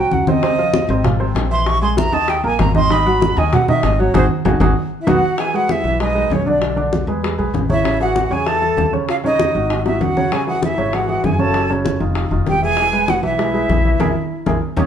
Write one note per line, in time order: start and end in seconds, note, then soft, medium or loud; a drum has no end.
0.00 0.10 C2 medium
0.00 0.22 F#3 medium
0.00 0.22 F#4 medium
0.00 0.22 F#5 medium
0.00 0.15 G5 medium
0.11 0.83 C#2 medium
0.11 0.30 F#5 medium
0.11 high conga medium
0.27 0.40 C3 medium
0.27 0.40 C4 medium
0.27 0.41 C5 medium
0.27 1.06 D#5 medium
0.27 high conga medium
0.42 0.55 C3 medium
0.42 0.55 C4 medium
0.42 0.56 C5 medium
0.42 high bongo medium
0.42 high conga soft
0.58 0.84 F3 medium
0.58 0.84 F4 medium
0.58 0.84 F5 medium
0.58 high conga soft
0.74 high bongo medium
0.74 high conga medium
0.89 1.32 G#1 loud
0.89 1.02 C3 medium
0.89 1.02 C4 medium
0.89 1.03 C5 medium
0.89 high conga soft
1.04 1.17 F3 medium
1.04 1.18 F4 medium
1.04 1.18 F5 medium
1.04 high bongo medium
1.04 high conga soft
1.04 low conga medium
1.20 1.45 C3 medium
1.20 1.46 C4 medium
1.20 1.46 C5 medium
1.20 high conga soft
1.35 2.07 A#1 medium
1.35 high bongo medium
1.35 low bongo medium
1.35 high conga soft
1.51 1.76 E3 medium
1.51 1.76 E4 medium
1.51 1.77 E5 medium
1.51 1.69 C6 loud
1.51 high conga soft
1.66 1.82 C#6 loud
1.66 high bongo medium
1.66 high conga soft
1.82 1.95 G#3 medium
1.82 1.95 G#4 medium
1.82 1.95 G#5 medium
1.82 2.00 C6 medium
1.82 high conga soft
1.97 2.10 E3 medium
1.97 2.10 E4 medium
1.97 2.11 E5 medium
1.97 2.15 A#5 medium
1.97 high bongo medium
1.97 high conga medium
2.12 2.42 D#2 medium
2.12 2.38 D#3 medium
2.12 2.39 D#4 medium
2.12 2.39 D#5 medium
2.12 2.31 A5 medium
2.12 high bongo soft
2.12 high conga soft
2.28 2.45 G5 medium
2.28 high bongo medium
2.28 high conga soft
2.44 2.58 A#1 medium
2.44 2.69 A#3 medium
2.44 2.69 A#4 medium
2.44 2.62 G#5 loud
2.44 2.70 A#5 medium
2.44 high bongo soft
2.44 high conga soft
2.59 3.31 G#1 medium
2.59 2.75 A#5 medium
2.59 high bongo medium
2.59 low bongo medium
2.59 high conga medium
2.75 2.88 D#3 medium
2.75 2.88 D#4 medium
2.75 2.88 D#5 medium
2.75 2.93 C6 loud
2.75 high bongo soft
2.75 high conga medium
2.90 3.03 D#3 medium
2.90 3.03 D#4 medium
2.90 3.04 D#5 medium
2.90 3.40 B5 medium
2.90 high bongo medium
2.90 high conga soft
3.06 3.31 F#3 medium
3.06 3.32 F#4 medium
3.06 3.32 F#5 medium
3.06 high conga soft
3.22 high bongo medium
3.22 high conga medium
3.37 3.80 D#2 loud
3.37 3.50 D#3 medium
3.37 3.50 D#4 medium
3.37 3.51 D#5 medium
3.37 3.55 G#5 medium
3.37 high conga soft
3.53 3.65 F#3 medium
3.53 3.66 F#4 medium
3.53 3.66 F#5 medium
3.53 3.69 F#5 medium
3.53 high bongo medium
3.53 high conga soft
3.53 low conga medium
3.68 3.94 D#3 medium
3.68 3.94 D#4 medium
3.68 3.94 D#5 medium
3.68 3.87 E5 medium
3.68 high conga soft
3.68 low conga medium
3.83 4.12 G#1 loud
3.83 4.02 D#5 medium
3.83 high bongo medium
3.83 low bongo medium
3.83 high conga soft
3.99 4.12 F#3 medium
3.99 4.12 F#4 medium
3.99 4.15 C#5 medium
3.99 4.12 F#5 medium
3.99 high conga soft
4.14 4.26 G#1 loud
4.14 4.24 D#4 loud
4.14 4.24 F#4 loud
4.14 4.24 G#4 loud
4.14 4.25 C5 medium
4.14 low bongo loud
4.14 high conga loud
4.45 4.57 G#1 loud
4.45 4.55 D#4 medium
4.45 4.55 F#4 medium
4.45 4.55 G#4 medium
4.45 low bongo loud
4.45 high conga medium
4.60 4.72 G#1 loud
4.60 4.71 D#4 medium
4.60 4.71 F#4 loud
4.60 4.71 G#4 loud
4.60 low bongo loud
4.60 high conga loud
5.00 5.10 E4 medium
5.00 5.11 E5 medium
5.07 5.19 B1 medium
5.07 5.17 B3 medium
5.07 5.17 D#4 medium
5.07 5.17 F#4 loud
5.07 5.40 F#4 medium
5.07 5.42 F#5 loud
5.07 low bongo loud
5.07 high conga loud
5.38 5.51 E3 medium
5.38 5.51 E4 medium
5.38 5.56 G#4 medium
5.38 5.51 E5 medium
5.38 5.57 G#5 loud
5.38 high bongo medium
5.38 high conga soft
5.53 5.79 G#3 medium
5.53 5.72 F#4 medium
5.53 5.79 G#4 medium
5.53 5.79 B4 medium
5.53 5.73 F#5 medium
5.53 high bongo soft
5.53 high conga soft
5.69 6.01 E4 medium
5.69 6.01 E5 medium
5.69 high bongo medium
5.69 high conga medium
5.84 6.27 B1 medium
5.84 5.97 E3 medium
5.84 5.97 E4 medium
5.84 5.98 E5 medium
5.84 high bongo soft
5.84 high conga soft
6.00 6.13 G#3 medium
6.00 6.34 D#4 medium
6.00 6.13 G#4 medium
6.00 6.13 B4 medium
6.00 6.35 D#5 medium
6.00 high bongo medium
6.00 high conga soft
6.15 6.40 G#3 medium
6.15 6.41 G#4 medium
6.15 6.41 B4 medium
6.15 high bongo soft
6.15 high conga soft
6.30 7.02 B1 medium
6.30 6.49 C#4 medium
6.30 6.50 C#5 medium
6.30 high bongo soft
6.30 low bongo medium
6.30 high conga medium
6.46 6.72 D3 medium
6.46 6.72 D4 medium
6.46 6.78 D4 medium
6.46 6.72 D5 medium
6.46 6.78 D5 medium
6.46 high conga soft
6.62 high bongo medium
6.62 high conga soft
6.76 7.02 D3 medium
6.76 7.02 D4 medium
6.76 7.02 D5 medium
6.76 high bongo soft
6.76 high conga soft
6.93 high bongo medium
6.93 high conga medium
7.07 7.36 E2 medium
7.07 7.21 G#3 medium
7.07 7.21 G#4 medium
7.07 7.21 B4 medium
7.07 high bongo soft
7.07 high conga soft
7.23 7.36 G#3 medium
7.23 7.36 G#4 medium
7.23 7.36 B4 medium
7.23 high bongo medium
7.23 high conga soft
7.38 7.53 B1 medium
7.38 7.64 G#3 medium
7.38 7.64 G#4 medium
7.38 7.64 B4 medium
7.38 high bongo soft
7.38 high conga soft
7.54 8.26 A1 medium
7.54 high bongo soft
7.54 low bongo medium
7.54 high conga medium
7.69 7.82 C#3 medium
7.69 7.82 C#4 medium
7.69 7.98 E4 medium
7.69 7.83 C#5 medium
7.69 7.99 E5 medium
7.69 high conga medium
7.84 7.97 C#3 medium
7.84 7.97 C#4 medium
7.84 7.97 C#5 medium
7.84 high bongo medium
7.84 high conga soft
8.00 8.26 E3 medium
8.00 8.26 E4 medium
8.00 8.34 F#4 medium
8.00 8.26 G#4 medium
8.00 8.34 F#5 loud
8.00 high bongo soft
8.00 high conga soft
8.16 high bongo medium
8.16 high conga medium
8.30 8.74 E2 medium
8.30 8.44 C#3 medium
8.30 8.44 C#4 medium
8.30 8.49 G#4 medium
8.30 8.44 C#5 medium
8.30 8.49 G#5 medium
8.30 high bongo soft
8.30 high conga soft
8.46 8.59 E3 medium
8.46 8.59 E4 medium
8.46 8.59 G#4 medium
8.46 8.94 A4 medium
8.46 8.94 A5 loud
8.46 high bongo medium
8.46 high conga soft
8.61 8.87 E3 medium
8.61 8.87 E4 medium
8.61 8.87 A4 medium
8.61 high bongo soft
8.61 high conga soft
8.77 9.49 D#2 medium
8.77 high bongo soft
8.77 low bongo medium
8.77 high conga medium
8.93 9.18 C#3 medium
8.93 9.18 C#4 medium
8.93 9.19 C#5 medium
8.93 high conga soft
9.09 9.15 F4 medium
9.09 9.16 F5 medium
9.09 high bongo medium
9.09 high conga soft
9.24 9.49 C#3 medium
9.24 9.49 C#4 medium
9.24 9.82 D#4 medium
9.24 9.50 C#5 medium
9.24 9.83 D#5 medium
9.24 high bongo soft
9.24 high conga soft
9.39 high bongo medium
9.39 high conga medium
9.55 9.98 G#1 medium
9.55 9.67 D#3 medium
9.55 9.68 D#4 medium
9.55 9.68 F#4 medium
9.55 high bongo soft
9.55 high conga soft
9.70 9.83 D#3 medium
9.70 9.83 D#4 medium
9.70 9.83 F#4 medium
9.70 high bongo medium
9.70 high conga soft
9.86 10.11 D#3 medium
9.86 10.11 D#4 medium
9.86 10.03 E4 medium
9.86 10.11 F#4 medium
9.86 10.03 E5 medium
9.86 high bongo medium
9.86 high conga soft
10.01 10.72 C#2 medium
10.01 10.34 F#4 medium
10.01 10.34 F#5 medium
10.01 low bongo medium
10.01 high conga medium
10.17 10.29 C#3 medium
10.17 10.29 C#4 medium
10.17 10.29 C#5 medium
10.17 low bongo medium
10.17 high conga medium
10.32 10.44 C#3 medium
10.32 10.45 C#4 medium
10.32 10.48 G#4 medium
10.32 10.45 C#5 medium
10.32 10.48 G#5 medium
10.32 high bongo medium
10.32 high conga soft
10.47 10.72 E3 medium
10.47 10.72 E4 medium
10.47 10.62 F#4 medium
10.47 10.73 G#4 medium
10.47 10.62 F#5 medium
10.47 high bongo soft
10.47 high conga soft
10.62 10.95 E4 medium
10.62 10.96 E5 medium
10.62 high bongo medium
10.62 high conga medium
10.78 11.21 G#1 medium
10.78 10.90 C#3 medium
10.78 10.90 C#4 medium
10.78 10.91 C#5 medium
10.78 high bongo soft
10.78 high conga soft
10.93 11.06 E3 medium
10.93 11.06 E4 medium
10.93 11.26 F#4 medium
10.93 11.07 G#4 medium
10.93 11.27 F#5 medium
10.93 high bongo medium
10.93 high conga soft
11.08 11.33 E3 medium
11.08 11.34 E4 medium
11.08 11.34 G#4 medium
11.08 high bongo soft
11.08 high conga soft
11.24 11.95 F#1 medium
11.24 11.41 G#4 medium
11.24 11.42 G#5 medium
11.24 high bongo soft
11.24 low bongo medium
11.24 high conga medium
11.39 11.64 C#3 medium
11.39 11.64 C#4 medium
11.39 11.70 A4 medium
11.39 11.65 C#5 medium
11.39 11.71 A5 medium
11.39 high conga soft
11.54 high bongo medium
11.54 high conga soft
11.70 11.95 C#3 medium
11.70 11.96 C#4 medium
11.70 11.95 C#5 medium
11.70 high bongo soft
11.70 high conga soft
11.85 high bongo medium
11.85 high conga medium
12.00 12.29 F1 medium
12.00 12.13 D#3 medium
12.00 12.13 D#4 medium
12.00 12.14 F4 medium
12.00 high bongo soft
12.00 high conga soft
12.15 12.28 D#3 medium
12.15 12.28 D#4 medium
12.15 12.29 F4 medium
12.15 high bongo medium
12.15 high conga soft
12.31 12.46 F1 medium
12.31 12.57 D#3 medium
12.31 12.57 D#4 medium
12.31 12.57 F4 medium
12.31 high bongo soft
12.31 high conga soft
12.46 13.18 E1 medium
12.46 12.62 G4 medium
12.46 12.62 G5 medium
12.46 high bongo soft
12.46 low bongo medium
12.46 high conga medium
12.62 12.75 E3 medium
12.62 12.75 E4 medium
12.62 13.10 G#4 medium
12.62 12.75 E5 medium
12.62 13.11 G#5 loud
12.77 12.90 E3 medium
12.77 12.90 E4 medium
12.77 12.91 E5 medium
12.77 high bongo medium
12.77 high conga soft
12.93 13.18 G#3 medium
12.93 13.18 G#4 medium
12.93 13.18 B4 medium
12.93 high bongo soft
12.93 high conga soft
13.08 13.24 F#4 medium
13.08 13.24 F#5 loud
13.08 high bongo medium
13.08 high conga medium
13.23 13.66 B1 medium
13.23 13.36 E3 medium
13.23 13.36 E4 medium
13.23 14.58 E4 medium
13.23 13.36 E5 medium
13.23 14.58 E5 medium
13.23 high bongo soft
13.23 high conga soft
13.38 13.51 G#3 medium
13.38 13.51 G#4 medium
13.38 13.51 B4 medium
13.38 high bongo medium
13.38 high conga soft
13.54 13.79 G#3 medium
13.54 13.79 G#4 medium
13.54 13.80 B4 medium
13.54 high bongo soft
13.54 high conga soft
13.69 13.98 A#1 medium
13.69 high bongo soft
13.69 low bongo medium
13.69 high conga medium
13.85 13.98 E3 medium
13.85 13.98 E4 medium
13.85 13.98 E5 medium
13.85 high conga soft
14.00 14.12 A#1 medium
14.00 14.10 E4 loud
14.00 14.10 G#4 medium
14.00 14.10 A#4 loud
14.00 low bongo medium
14.00 high conga medium
14.46 14.58 A#1 medium
14.46 14.56 E4 medium
14.46 14.56 G#4 medium
14.46 14.57 A#4 medium
14.46 low bongo medium
14.46 high conga medium
14.76 14.86 D#2 loud
14.76 14.86 C#4 medium
14.76 14.86 D#4 medium
14.76 14.86 G4 medium
14.76 low bongo loud
14.76 high conga medium